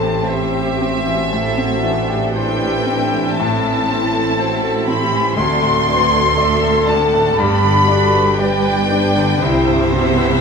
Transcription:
Already playing: double bass section A1, grand piano A2 E3 C4, cello section A2, viola section C4 E4, french horn section A4, violin section C5 A5, flute section A5
0.02 grand piano G4
0.25 french horn section G4, viola section G4, grand piano C5, violin section E5, flute section E5
0.55 grand piano G4
0.76 french horn section F#4
0.81 grand piano C4
1.07 grand piano E3
1.31 grand piano A2, viola section C4 A4, violin section C5
1.57 grand piano C4
1.81 grand piano E3, viola section D4
2.09 grand piano G4
2.32 french horn section E4, violin section B4 E5 G5, grand piano C5, flute section G5
2.62 grand piano G4
2.83 grand piano C4, french horn section D4
3.14 grand piano E3
3.37 grand piano A2, viola section C4 E4, french horn section C4, violin section A4 A5, flute section A5
3.66 grand piano E3
3.90 grand piano C4, french horn section E4
4.14 grand piano A4
4.38 viola section C4, french horn section F#4, grand piano C5, violin section E5
4.64 grand piano A4
4.87 grand piano C4, french horn section G4, flute section B5, violin section B5
5.13 grand piano E3
5.36 cello section D2, grand piano D2, double bass section D2, viola section F#4, french horn section A4, violin section A4 D5 C6, flute section C6
5.62 grand piano A2
5.87 grand piano D4, violin section A4, french horn section B4
6.12 grand piano A4
6.36 viola section A4, french horn section A4, grand piano D5, violin section E5
6.62 grand piano A4
6.87 grand piano D4, violin section F#5 A5, flute section A5
7.14 grand piano A2
7.36 double bass section G1, cello section G2, grand piano G2, viola section D4 G4, french horn section G4, violin section D5 B5, flute section B5
7.64 grand piano D3
7.87 grand piano D4, viola section F#4
8.13 grand piano B4
8.37 viola section D4 G4, violin section B4 D5 G5, french horn section B4, grand piano D5, flute section G5
8.64 grand piano B4
8.90 french horn section D4, grand piano D4, violin section B4
9.17 grand piano D3
9.40 double bass section C2, grand piano C2, cello section C3, viola section C4 E4, french horn section E4, violin section C5 E5
9.68 grand piano G2
9.91 viola section B3, grand piano C4, french horn section F#4
10.17 grand piano B4

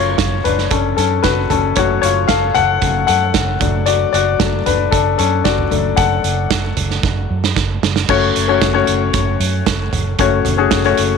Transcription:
Already playing: fingered electric bass F#1, grand piano F#3 A3 C#4 F4 C#5
0.18 fingered electric bass F#1, kick, snare, closed hi-hat
0.44 fingered electric bass F#1, grand piano D4 B4, closed hi-hat, floor tom
0.58 snare
0.70 fingered electric bass F#1, grand piano C#4 A4, kick, closed hi-hat
0.97 fingered electric bass F#2, grand piano C#4 A4, closed hi-hat
1.23 fingered electric bass F#1, grand piano F#4 B4, kick, snare, closed hi-hat
1.50 fingered electric bass F#1, grand piano C#4 A4, closed hi-hat, floor tom
1.76 fingered electric bass F#1, grand piano F#3 A3 C#4 F#4 C#5, kick, closed hi-hat
2.02 fingered electric bass F#1, grand piano F4 C#5, closed hi-hat
2.28 fingered electric bass F#1, grand piano A4 F5, kick, snare, closed hi-hat
2.54 fingered electric bass F#1, grand piano A4 F#5, closed hi-hat, floor tom
2.82 fingered electric bass F#1, grand piano F#3 A3 C#4, kick, closed hi-hat
3.07 fingered electric bass F#2, grand piano A4 F#5, closed hi-hat
3.34 fingered electric bass F#1, kick, snare, closed hi-hat
3.60 fingered electric bass F#1, grand piano F#3 A3 D4, kick, closed hi-hat, floor tom
3.86 grand piano F#4 D5, closed hi-hat
4.13 fingered electric bass F#1, grand piano F#4 D5, closed hi-hat
4.39 fingered electric bass F#1, grand piano F#3 A3 D4, kick, snare, closed hi-hat
4.66 fingered electric bass F#1, grand piano D4 B4, closed hi-hat, floor tom
4.91 fingered electric bass F#1, grand piano D4 A4, kick, closed hi-hat
5.18 fingered electric bass F#2, grand piano C#4 A4, closed hi-hat
5.44 fingered electric bass F#1, grand piano F#4 D5, kick, snare, closed hi-hat
5.58 floor tom
5.71 fingered electric bass F#1, grand piano F#3 A3 D4, closed hi-hat, floor tom
5.96 fingered electric bass F#1, grand piano A4 F#5, kick, closed hi-hat
6.24 fingered electric bass F#1, closed hi-hat
6.51 fingered electric bass F#1, kick, snare, closed hi-hat
6.77 fingered electric bass F#1, closed hi-hat, floor tom
6.91 snare
7.03 fingered electric bass F#1, kick, snare
7.30 fingered electric bass F#2
7.44 snare
7.56 fingered electric bass F#1, kick, snare
7.83 fingered electric bass F#1, snare
7.96 snare
8.09 fingered electric bass F#1, grand piano A3 C#4 F#4 C#5, kick, crash
8.36 fingered electric bass F#1, closed hi-hat
8.48 grand piano A3 C#4 F#4 C#5
8.62 fingered electric bass F#1, kick, snare, closed hi-hat
8.73 grand piano A3 C#4 F#4 C#5
8.87 fingered electric bass F#1, closed hi-hat
9.14 fingered electric bass F#1, kick, closed hi-hat
9.40 fingered electric bass F#2, closed hi-hat
9.66 fingered electric bass F#1, kick, snare, closed hi-hat
9.93 fingered electric bass F#1, closed hi-hat, floor tom
10.19 fingered electric bass F#1, grand piano A3 C#4 F#4 C#5, kick, closed hi-hat
10.45 fingered electric bass F#1, closed hi-hat, floor tom
10.57 grand piano A3 C#4 F#4 G#4
10.71 fingered electric bass F#1, kick, snare, closed hi-hat
10.84 grand piano A3 C#4 F#4 C#5, closed hi-hat
10.97 fingered electric bass F#1, closed hi-hat

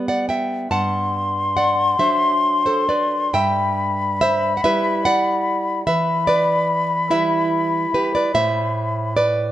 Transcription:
Already playing: nylon-string guitar G3 B3
0.08 nylon-string guitar D5 F#5
0.29 nylon-string guitar E5 G5
0.71 nylon-string guitar G2 F#5 A5, flute C6
1.57 nylon-string guitar D5 F#5
1.99 nylon-string guitar F#3 D4 C5 E5
2.66 nylon-string guitar A4 C5
2.89 nylon-string guitar B4 D5
3.33 nylon-string guitar G2 E5 G5, flute B5
4.21 nylon-string guitar C5 E5
4.57 nylon-string guitar F#5
4.64 nylon-string guitar G3 E4 B4 E5
5.05 nylon-string guitar D5 F#5
5.86 nylon-string guitar E3 B4 E5, flute B5
6.27 nylon-string guitar B4 D5
7.11 nylon-string guitar G3 E4 B4 E5
7.94 nylon-string guitar G4 B4
8.15 nylon-string guitar B4 D5
8.34 nylon-string guitar A2 C5 E5
9.17 nylon-string guitar B4 D5

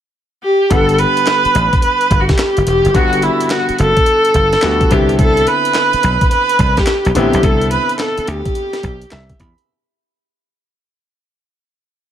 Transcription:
0.44 viola G4
0.70 slap bass G1, grand piano D3 G3 B3 F#5, viola A4, kick, closed hi-hat
0.89 closed hi-hat
0.98 viola B4, closed hi-hat
1.17 closed hi-hat
1.27 snare, clap, closed hi-hat
1.45 muted slap bass stroke, closed hi-hat
1.55 slap bass A1, closed hi-hat
1.73 kick, closed hi-hat
1.82 viola B4, closed hi-hat
2.01 closed hi-hat
2.11 slap bass G1, kick, closed hi-hat
2.21 viola F#4
2.29 viola G4, kick, snare, closed hi-hat
2.38 snare, clap, closed hi-hat
2.57 slap bass F#1, closed hi-hat
2.67 slap bass E1, viola G4, closed hi-hat
2.85 slap bass F#1, closed hi-hat
2.94 slap bass G1, grand piano D3 G3 B3 F#4, viola F#4, kick, closed hi-hat
3.13 closed hi-hat
3.22 viola E4, closed hi-hat
3.41 closed hi-hat
3.50 viola F#4, snare, clap, closed hi-hat
3.69 muted slap bass stroke, closed hi-hat
3.79 slap bass F#1, viola A4, closed hi-hat
3.97 kick, closed hi-hat
4.06 closed hi-hat
4.25 closed hi-hat
4.34 slap bass G1, kick, closed hi-hat
4.53 snare, closed hi-hat
4.62 slap bass D2, grand piano D3 G3 B3 F#4, snare, clap, closed hi-hat
4.81 kick, closed hi-hat
4.91 slap bass C2, grand piano D3 B3 C4 E4, viola G4, kick, closed hi-hat
5.09 closed hi-hat
5.19 viola A4, kick, closed hi-hat
5.37 closed hi-hat
5.47 viola B4, closed hi-hat
5.65 closed hi-hat
5.75 snare, clap, closed hi-hat
5.93 muted slap bass stroke, closed hi-hat
6.03 slap bass B1, closed hi-hat
6.21 kick, closed hi-hat
6.31 viola B4, closed hi-hat
6.49 closed hi-hat
6.59 slap bass C2, kick, closed hi-hat
6.77 viola G4, kick, snare, closed hi-hat
6.87 snare, clap, closed hi-hat
7.05 slap bass B1, closed hi-hat
7.15 slap bass A1, grand piano D3 B3 C4 E4, viola G4, closed hi-hat
7.33 slap bass B1, closed hi-hat
7.43 slap bass C2, viola A4, kick, closed hi-hat
7.61 closed hi-hat
7.71 viola B4, closed hi-hat
7.89 closed hi-hat
7.99 viola A4, snare, clap, closed hi-hat
8.18 muted slap bass stroke, closed hi-hat
8.27 slap bass D2, viola G4, closed hi-hat
8.45 kick, closed hi-hat
8.55 closed hi-hat
8.73 snare, closed hi-hat
8.83 slap bass B1, kick, closed hi-hat
9.02 closed hi-hat
9.11 slap bass C2, grand piano E5, snare, clap, closed hi-hat
9.29 kick, closed hi-hat
9.40 slap bass E2, grand piano B5, kick, closed hi-hat
9.58 closed hi-hat

